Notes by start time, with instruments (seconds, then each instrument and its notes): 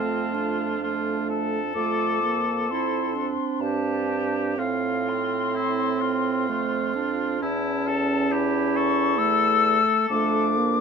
Already playing: bassoon F2, french horn A3, clarinet C4, oboe F4, flute A5
0.34 clarinet D4
0.83 french horn A3, oboe F4
1.30 oboe A4
1.75 bassoon F2, french horn A3, clarinet F4, flute D6
2.23 french horn A#3
2.69 french horn C4, clarinet E4, flute C6
3.15 clarinet D4
3.60 bassoon G2, oboe G4, flute A5
4.57 bassoon A2, clarinet C4, oboe F4, flute F5
5.09 flute C6
5.55 french horn C4, oboe E4
6.01 oboe F4
6.49 bassoon F2, clarinet A3
6.95 clarinet D4
7.42 bassoon E2, french horn C#4, clarinet C#4, oboe E4, flute A5
7.87 oboe A4
8.32 clarinet E4, oboe G4
8.76 oboe A4, flute C#6
9.18 french horn A3, flute E6
10.10 bassoon F2, french horn A3, clarinet D4, flute D6
10.57 french horn A#3